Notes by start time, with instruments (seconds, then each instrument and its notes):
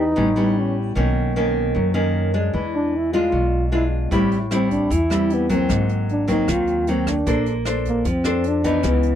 Already playing: upright bass E2, nylon-string guitar E3
0.00 trombone D#4
0.16 upright bass A1, nylon-string guitar A2 G3 B3 C#4
0.36 nylon-string guitar G3 B3 C#4
0.59 trombone C#4
0.95 upright bass B1, nylon-string guitar B2 D#3 A#3 C#4
1.36 nylon-string guitar D#3 A#3 C#4
1.75 nylon-string guitar F#2, upright bass F#2
1.94 nylon-string guitar D#3 A#3 C#4
2.34 nylon-string guitar G#3 D4
2.54 upright bass E2, nylon-string guitar E3
2.75 trombone D4
2.97 trombone E4
3.13 nylon-string guitar G#3 D4 F4, trombone F4
3.32 upright bass B1, nylon-string guitar B2
3.72 nylon-string guitar G#3 D4 F4, trombone E4
4.11 upright bass A1, nylon-string guitar A2 G3 C4 E4, kick, closed hi-hat
4.32 closed hi-hat
4.51 nylon-string guitar G3 C4 E4, trombone C4, cross-stick, closed hi-hat
4.71 trombone D4, kick, closed hi-hat
4.90 upright bass E2, nylon-string guitar E3, trombone E4, kick, closed hi-hat
5.10 nylon-string guitar G3 C4 E4, cross-stick, closed hi-hat
5.30 trombone B3, closed hi-hat
5.49 nylon-string guitar F#3 A#3 C4, trombone C4, kick, closed hi-hat
5.69 upright bass G#1, nylon-string guitar G#2, kick, cross-stick, closed hi-hat
5.89 closed hi-hat
6.09 trombone D4, closed hi-hat
6.27 nylon-string guitar F#3 A#3 C4, trombone D#4, kick, closed hi-hat
6.48 upright bass D#2, nylon-string guitar D#3, trombone F4, kick, cross-stick, closed hi-hat
6.67 closed hi-hat
6.87 nylon-string guitar F#3 A#3 C4, trombone C4, closed hi-hat
7.07 trombone D4, kick, cross-stick, closed hi-hat
7.26 upright bass A#1, nylon-string guitar A#3 D4 A4 C5, kick, closed hi-hat
7.46 closed hi-hat
7.65 nylon-string guitar D4 A4 C5, cross-stick, closed hi-hat
7.85 trombone A#3, kick, closed hi-hat
8.05 upright bass F2, nylon-string guitar F3, kick, closed hi-hat
8.09 trombone C4
8.24 nylon-string guitar D4 A4 C5, cross-stick, closed hi-hat
8.44 closed hi-hat
8.48 trombone D4
8.64 nylon-string guitar E3 B3 D#4, kick, closed hi-hat
8.83 upright bass C#2, nylon-string guitar C#3, trombone B3, kick, cross-stick, closed hi-hat
9.03 closed hi-hat